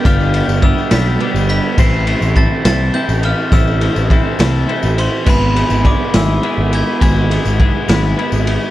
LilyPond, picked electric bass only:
\new Staff \with { instrumentName = "Picked electric bass" } { \clef bass \time 6/8 \key a \minor \tempo 4. = 69 g,,8. g,,8 r16 b,,8 r16 g,,8 r16 | a,,8. a,,8 r16 c,8 r16 a,,8 r16 | a,,8. a,,8 r16 c,8 r16 a,,8 r16 | gis,,8. gis,,8 r16 gis,,8 r16 gis,,8 r16 |
gis,,8. gis,,8 r16 gis,,8 r16 gis,,8 r16 | }